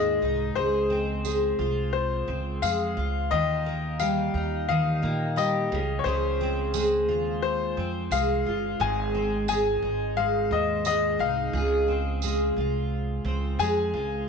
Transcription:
Already playing: D#2 G#2 G#3 C4 D#4 G#4 D#5
0.22 C2 D#4
0.55 C#2 G#4 C5
0.90 C4
1.24 G#3, tambourine
1.59 C2 F4
1.93 C5
2.28 C#2 C4
2.62 F2 G#3 F5, tambourine
2.97 C#2 F4
3.31 D#2 D#3 F4 D#5
3.66 A#3
3.99 G3 F5, tambourine
4.34 D#2 D#4
4.69 D#3 F5
5.02 A#2 A#3
5.36 G3 D#5, tambourine
5.72 C#2 C#3
5.99 C#5
6.04 C#2 C#3 G#4 C5
6.41 C4
6.74 G#3, tambourine
7.08 D#2 F4
7.42 C5
7.77 F2 C4
8.11 C2 G#3 F5, tambourine
8.45 G1 F4
8.80 G#1 G#2 G#4 G#5
9.14 C4
9.48 G#3 G#5, tambourine
9.82 G#1 D#4
10.17 G#2 F5
10.51 D#2 C4 D#5
10.85 G#3 D#5, tambourine
11.19 C2 D#4 F5
11.53 C#2 G#4
11.88 C4
12.22 G#3, tambourine
12.57 C2 F4
13.25 C#2 C4
13.59 F2 G#3 G#5, tambourine
13.94 C#2 F4

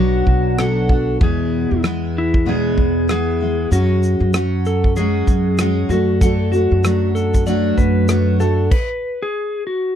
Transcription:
Already playing: B1 B2 F#3 B3 D4 F#4
0.27 B1 F#4, kick
0.58 F#3 B3 D4 F#4 A4, cross-stick
0.89 B3 D4 F#4, kick
1.21 E2 B2 E3 G#3 B3 E4 G#4, kick
1.71 E2
1.83 E3 G#3 B3 E4, cross-stick
2.18 E4
2.34 kick
2.46 E2 B2 E3 G#3 B3 E4 G#4
2.77 E2, kick
3.08 E3 G#3 B3 E4 G#4, cross-stick
3.40 E3 G#3 B3 E4
3.71 F#2 F#3 G#3 C#4 F#4, shaker
4.03 shaker
4.20 F#2
4.33 F#3 C#4 F#4, cross-stick, shaker
4.65 A4, shaker
4.84 kick
4.96 F#3 G#3 C#4 F#4 G#4, shaker
5.27 F#2, kick, shaker
5.58 F#3 G#3 C#4 F#4, cross-stick, shaker
5.89 F#2 A3 D4 F#4, cross-stick, shaker
6.21 F#3 A3 D4 F#4 A4, kick, shaker
6.52 A3 D4 F#4, shaker
6.71 F#2
6.83 F#3 A3 D4 F#4, cross-stick, shaker
7.15 A4, shaker
7.34 kick, shaker
7.46 F#3 A3 D4 F#4 D5, shaker
7.77 F#2 B4, kick, shaker
8.08 F#3 A3 D4 F#4, cross-stick, shaker
8.39 A3 D4 F#4 A4, cross-stick, shaker
8.71 B4, kick, crash
9.22 G#4
9.67 F#4

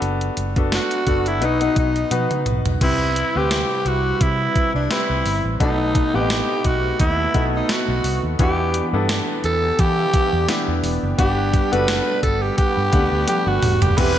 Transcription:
Already playing: B3 D4 F#4 A4
0.02 F#1, closed hi-hat
0.21 closed hi-hat
0.37 F#1, closed hi-hat
0.56 B3 D4 F#4 A4, kick, closed hi-hat
0.72 F#4, snare, closed hi-hat
0.91 closed hi-hat
1.07 F#1 B3 D4 F#4 A4, kick, closed hi-hat
1.26 E4, closed hi-hat
1.41 B1 B2 B3 D#4 F#4 B4, closed hi-hat
1.61 B3 D#4 F#4 B4, closed hi-hat
1.76 B1 D#4, kick, closed hi-hat
1.96 closed hi-hat
2.11 B2 B3 D#4 F#4 B4, closed hi-hat, high tom
2.31 closed hi-hat, mid tom
2.46 B1, closed hi-hat, mid tom
2.65 B1, closed hi-hat, floor tom
2.81 C2 C3 G3 C4 E4 G4 B4, kick, closed hi-hat, crash
3.16 closed hi-hat
3.36 D2 G3 C4 E4 G4 B4
3.51 snare, closed hi-hat
3.85 C2 F#4, closed hi-hat
4.21 C3 E4, kick, closed hi-hat
4.55 kick, closed hi-hat
4.75 C2 D4
4.91 C4 E4 G4 B4, snare, closed hi-hat
5.10 C2
5.25 G1, open hi-hat
5.44 A1
5.60 B1 B2 A3 B3 D#4 F#4 A4 D#5, kick, closed hi-hat
5.95 kick, closed hi-hat
6.14 A1 B3 C4 G4 B4 F#5
6.21 D#4
6.30 snare, closed hi-hat
6.64 B1 F#4, kick, closed hi-hat
7.00 D#2 E4, kick, closed hi-hat
7.34 B1 B3 D#4 F#4 A4, kick, closed hi-hat
7.56 D#4
7.69 F#4, snare, closed hi-hat
7.88 B1
8.04 C2, open hi-hat
8.23 D#2
8.39 E2 E3 B3 D4 E4 G4, kick, closed hi-hat
8.74 closed hi-hat
8.93 G2 B3 D4 E4 A4
9.09 snare, closed hi-hat
9.44 E2 A4, closed hi-hat
9.79 E3 G4, kick, closed hi-hat
10.14 kick, closed hi-hat
10.33 E2
10.49 B3 D4 E4 G4, snare, closed hi-hat
10.68 E2
10.83 E1, open hi-hat
11.03 F#1
11.18 G1 G3 B3 D4 G4 B4 F#5, kick, closed hi-hat
11.53 kick, closed hi-hat
11.72 F#1 B3 D4 F#4 A4 B4, closed hi-hat
11.88 snare, closed hi-hat
12.23 G1 A4, kick, closed hi-hat
12.41 G4
12.57 G4, kick, closed hi-hat
12.77 G2
12.92 D2 A3 D4 G4 F#5, kick, closed hi-hat
12.99 B3
13.12 D2
13.28 G4 G5, closed hi-hat, high tom
13.46 G1 F#4 F#5
13.62 E1, mid tom, open hi-hat
13.82 F#1 G4 G5, closed hi-hat, floor tom
13.97 E1 E3 B3 C4 D4 E4 G4 B4 B5, kick, closed hi-hat, crash

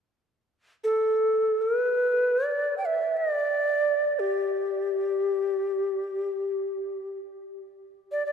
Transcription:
0.84 A4
1.62 B4
2.45 D5
2.78 G5
2.86 E5
3.17 D5
4.19 G4
8.12 D5
8.26 D5

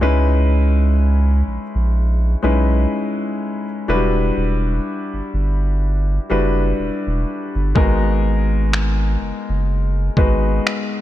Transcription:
0.01 C#2 G#3 C#4 D#4 E4 B4
1.47 A#1
1.75 A#1
2.42 B1 G#3 C#4 D#4 E4 B4
3.88 E1 F#3 D4 E4 F#4 B4
3.94 G3
4.37 E1
5.14 G1
5.34 G1
6.30 F#1 G3 D4 E4 F#4 B4
6.79 E1
7.07 E1
7.55 G1
7.75 G#1 G#3 B3 D#4 F#4 A#4, kick
8.73 finger snap
9.21 F#1
9.49 F#1
10.17 G#1 G#3 B3 D#4 F#4 B4, kick
10.67 finger snap

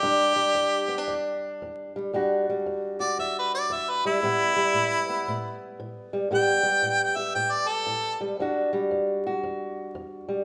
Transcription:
Already playing: G4
0.03 E2 G3 D4
0.36 G3
0.55 E2
0.88 B3
0.98 D4
1.08 E2
1.62 E2
1.96 G3
2.13 E2 G3 D4 F#4
2.50 G3
2.66 E2
3.00 F#4 D5
3.19 E2 E5
3.39 B4
3.54 D5
3.70 E2 E5
3.90 B4
4.05 G3 E4
4.23 A2 G3 B3
4.56 G3
4.74 A2
5.09 B3
5.28 A2
5.80 A2
6.13 G3
6.31 A2 G3 B3 G4
6.35 G5
6.63 G3
6.82 A2
7.04 G5
7.16 G4 E5
7.35 A2 G5
7.52 D5
7.67 A4
7.86 A2
8.21 G3
8.39 E2 G3 D4 F#4
8.73 G3
8.91 E2
9.27 F#4
9.43 E2
9.95 E2
10.29 G3

